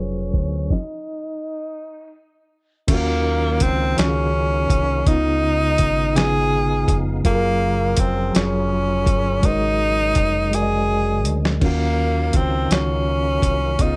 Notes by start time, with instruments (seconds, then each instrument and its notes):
Already playing: fingered electric bass F1, reed electric piano F#3 F4 G#4 A#4 B4 C5 F5, tenor saxophone C#4
0.34 fingered electric bass D2, kick, closed hi-hat
0.70 tenor saxophone D#4, kick, snare
2.88 fingered electric bass D#2, reed electric piano D#3 C#4 F4, tonewheel organ D#3 F#3 A#3 D#4 F5, tenor saxophone A#3, kick, closed hi-hat, crash
2.92 reed electric piano F#4
3.60 fingered electric bass C#2, tenor saxophone C4, kick, closed hi-hat
3.97 fingered electric bass C#2, reed electric piano D#3 C#4 F4, tenor saxophone C#4, snare, closed hi-hat
4.02 reed electric piano F#4
4.08 reed electric piano G#4
4.70 fingered electric bass C2, kick, closed hi-hat
5.05 fingered electric bass C#2, reed electric piano C#3 B3 D#4, tonewheel organ C#3 G#3 B3 D#4, tenor saxophone D#4, kick, closed hi-hat
5.10 reed electric piano F4
5.78 fingered electric bass G#1, kick, closed hi-hat
6.15 reed electric piano C#3 B3 D#4, tenor saxophone G#4, snare, closed hi-hat
6.20 reed electric piano F4
6.88 fingered electric bass F1, kick, closed hi-hat
7.24 fingered electric bass F#1, tonewheel organ C#3 F#3 F4 G#4 A#4, reed electric piano F#3 F4 G#4, tenor saxophone A#3, kick, closed hi-hat
7.29 reed electric piano A4
7.35 reed electric piano A#4
7.97 fingered electric bass F1, tenor saxophone C4, kick, closed hi-hat
8.33 fingered electric bass F1, reed electric piano F#3 F4 G#4, tenor saxophone C#4, snare, closed hi-hat
8.38 reed electric piano C#5
9.06 fingered electric bass G1, kick, closed hi-hat
9.42 fingered electric bass G#1, tonewheel organ F#3 G#3, reed electric piano G#3 F#4 A#4, kick, closed hi-hat
9.46 tenor saxophone D#4, reed electric piano C5
9.53 reed electric piano C#5
10.15 fingered electric bass F1, kick, closed hi-hat
10.51 reed electric piano G#3 F#4 A#4, tenor saxophone G#4, closed hi-hat
10.56 reed electric piano D5
10.63 reed electric piano D#5
11.25 fingered electric bass D2, closed hi-hat
11.45 snare
11.60 fingered electric bass D#2, reed electric piano D#3 C#4 F4, tonewheel organ D#3 A#3 D#4 F5, tenor saxophone A#3, kick, crash
11.65 reed electric piano F#4
12.33 fingered electric bass C#2, tenor saxophone C4, kick, closed hi-hat
12.69 fingered electric bass C#2, reed electric piano D#3 C#4 F4, tenor saxophone C#4, snare, closed hi-hat
12.74 reed electric piano F#4
13.42 fingered electric bass C2, kick, closed hi-hat
13.78 fingered electric bass C#2, reed electric piano C#3 B3 D#4, tonewheel organ C#3 G#3 B3 D#4, tenor saxophone D#4, kick, closed hi-hat
13.83 reed electric piano F4